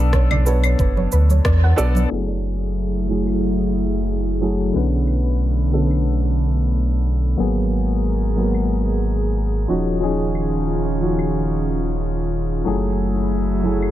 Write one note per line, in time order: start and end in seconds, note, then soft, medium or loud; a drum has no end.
0.00 0.75 B1 medium
0.00 0.42 B3 medium
0.00 0.42 D4 medium
0.00 0.43 A4 medium
0.00 0.43 D5 loud
0.13 0.31 C#5 medium
0.13 kick loud
0.13 cross-stick medium
0.13 shaker soft
0.31 0.45 D5 medium
0.31 low conga medium
0.31 claves medium
0.45 0.60 B3 medium
0.45 0.61 D4 medium
0.45 0.61 A4 medium
0.45 0.56 B4 loud
0.45 0.61 C#5 medium
0.45 shaker medium
0.64 0.78 C#5 medium
0.64 claves medium
0.64 shaker soft
0.79 1.07 F#1 medium
0.79 0.96 B4 medium
0.79 kick loud
0.79 shaker soft
0.97 1.05 C#5 medium
0.97 high conga medium
1.12 1.40 D2 medium
1.12 1.28 B4 loud
1.12 shaker medium
1.30 1.44 C#5 medium
1.30 high conga medium
1.30 shaker soft
1.45 1.73 E2 loud
1.45 1.61 D5 medium
1.45 kick loud
1.45 cross-stick loud
1.45 shaker soft
1.64 1.77 F#5 loud
1.76 2.06 B1 medium
1.76 1.92 B3 medium
1.76 1.92 D4 medium
1.76 1.92 A4 medium
1.76 1.93 D5 loud
1.76 1.88 D5 medium
1.76 shaker medium
1.95 2.10 D5 medium
1.95 high conga medium
1.95 shaker soft
2.09 4.72 F#1 medium
2.09 3.05 F#3 medium
2.09 4.72 F#3 medium
2.09 3.05 A3 medium
2.09 4.72 A3 medium
2.09 4.72 E4 medium
2.09 3.06 E4 medium
2.09 4.72 G#4 medium
2.09 3.07 G#4 medium
3.08 4.37 F#3 medium
3.08 4.38 A3 medium
3.08 4.38 E4 medium
3.08 4.38 G#4 medium
3.27 claves medium
4.41 4.71 F#3 medium
4.41 4.71 A3 medium
4.41 4.71 E4 medium
4.41 4.71 G#4 medium
4.73 7.35 B1 medium
4.73 5.69 D3 medium
4.73 7.36 D3 medium
4.73 7.36 A3 medium
4.73 5.70 B3 medium
4.73 7.36 B3 medium
4.73 5.70 C#4 medium
4.73 5.71 B4 medium
5.07 claves soft
5.72 5.87 D3 medium
5.72 5.88 B3 medium
5.72 5.88 C#4 medium
5.72 5.88 A4 medium
5.91 claves medium
7.37 9.66 G#1 medium
7.37 8.33 F#3 medium
7.37 9.67 G#3 medium
7.37 8.33 A#3 medium
7.37 8.34 B3 medium
7.37 12.62 G#4 medium
7.37 8.34 G#4 medium
7.37 9.67 A#4 medium
8.36 9.65 F#3 medium
8.36 9.65 A#3 medium
8.36 9.66 B3 medium
8.36 9.66 G#4 medium
8.54 claves medium
9.68 12.63 D#1 medium
9.68 12.63 D#3 medium
9.68 9.98 F3 medium
9.68 12.62 C#4 medium
9.68 9.98 C#4 medium
9.68 9.98 D#4 medium
9.68 12.63 F4 medium
9.68 9.99 F#4 medium
10.00 10.96 F3 medium
10.00 10.97 C#4 medium
10.00 10.98 D#4 medium
10.00 10.98 G#4 medium
10.35 claves soft
11.01 11.15 F3 medium
11.01 11.16 C#4 medium
11.01 11.16 D#4 medium
11.01 11.16 F#4 medium
11.19 claves medium
12.64 13.91 F#1 medium
12.64 13.60 F#3 medium
12.64 13.91 F#3 medium
12.64 13.91 A3 medium
12.64 13.61 A3 medium
12.64 13.91 E4 medium
12.64 13.61 E4 medium
12.64 13.91 G#4 medium
12.64 13.62 G#4 medium
13.63 13.91 F#3 medium
13.63 13.91 A3 medium
13.63 13.91 E4 medium
13.63 13.91 G#4 medium
13.82 claves medium